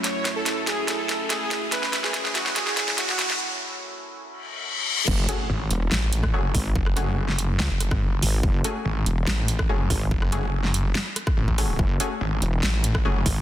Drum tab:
CC |----------------|----------------|----------------|x---------------|
HH |x-x-x-x-x-x-x-x-|x-x-x-x-x-x-x-x-|----------------|--x---x---x---o-|
SD |o-o-o-o-o-o-o-o-|oooooooooooooooo|----------------|--------o--r----|
BD |----------------|----------------|----------------|o----------o--o-|

CC |----------------|----------------|----------------|----------------|
HH |--x---x---x---o-|--x---x---x---o-|--x---x---x---o-|--x---x---x---o-|
SD |-rr--o--o-rr----|--------o--r----|-rr--o--o-rr----|--------o--r----|
BD |o----------o----|o----------o--o-|o----------o-o--|o----------o--o-|